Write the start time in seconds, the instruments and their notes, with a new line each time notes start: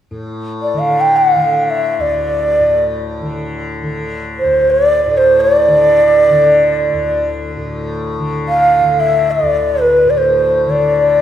0.11 tanpura A2
0.62 bansuri D5
0.74 tanpura D3
0.79 bansuri F5
1.01 bansuri G5
1.17 bansuri F#5
1.32 tanpura D3, bansuri F5
1.70 bansuri E5
1.98 tanpura D2, bansuri D5
2.60 tanpura A2
3.22 tanpura D3
3.83 tanpura D3
4.39 bansuri C5
4.45 tanpura D2
4.71 bansuri D5
5.06 tanpura A2
5.17 bansuri C5
5.41 bansuri D5
5.68 tanpura D3
6.30 tanpura D3
6.93 tanpura D2
7.57 tanpura A2
8.18 tanpura D3
8.48 bansuri F5
8.81 tanpura D3
9.00 bansuri E5
9.31 bansuri D5
9.42 tanpura D2
9.81 bansuri B4
10.05 tanpura A2
10.10 bansuri D5
10.18 bansuri C5
10.66 tanpura D3, bansuri D5